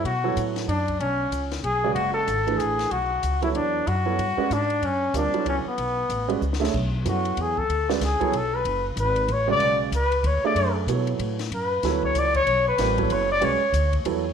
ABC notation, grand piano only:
X:1
M:3/4
L:1/8
Q:"Swing" 1/4=188
K:Bdor
V:1 name="Grand piano"
z [F,B,EAc]3 z2 | z4 z [C,G,FBd]- | [C,G,FBd]2 z [E,A,DGB]3 | z3 [F,B,EAc]3 |
z [F,B,EAc] z [G,CFBd] z2 | z2 [=G,=C^E^Ad] [F,B,=E=A^c]2 z | z3 [G,CFBd] z [A,DGce] | z2 [F,B,EAc]3 z |
z [G,CFBd] z [F,B,EAc] z2 | z4 z [C,G,FBd]- | [C,G,FBd]2 z3 [A,DGde]- | [A,DGde]2 [F,B,EAc]3 z |
z2 [F,B,EAc]3 z | z2 [=G,=C^E^Ad] [F,B,=E=A^c]2 z | [G,CFBd] z3 [F,B,EAc] z |]